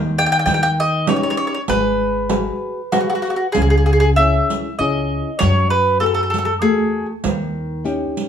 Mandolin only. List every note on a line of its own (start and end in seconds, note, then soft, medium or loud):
0.18 0.25 G5 loud
0.26 0.31 G5 medium
0.32 0.38 G5 medium
0.39 0.44 G5 medium
0.46 0.53 G5 medium
0.54 0.62 G5 medium
0.63 0.70 G5 loud
0.80 1.07 D#5 medium
1.09 1.15 C#5 medium
1.16 1.22 C#5 medium
1.23 1.29 C#5 medium
1.30 1.36 C#5 medium
1.37 1.45 C#5 medium
1.47 1.53 C#5 medium
1.54 1.61 C#5 medium
1.69 3.22 B4 medium
2.92 2.99 F#4 medium
3.00 3.08 F#4 medium
3.10 3.14 F#4 medium
3.15 3.21 F#4 medium
3.22 3.29 F#4 medium
3.30 3.35 F#4 medium
3.36 3.46 F#4 medium
3.52 3.61 G#4 medium
3.62 3.69 G#4 medium
3.70 3.76 G#4 medium
3.78 3.85 G#4 medium
3.86 3.92 G#4 medium
3.93 3.99 G#4 medium
4.00 4.09 G#4 medium
4.16 4.75 E5 medium
4.79 5.37 D#5 medium
5.39 5.70 C#5 loud
5.70 6.00 B4 medium
6.00 6.05 A4 medium
6.06 6.13 A4 medium
6.14 6.22 A4 medium
6.23 6.29 A4 soft
6.30 6.37 A4 medium
6.38 6.44 A4 medium
6.45 6.53 A4 medium
6.62 7.06 G#4 medium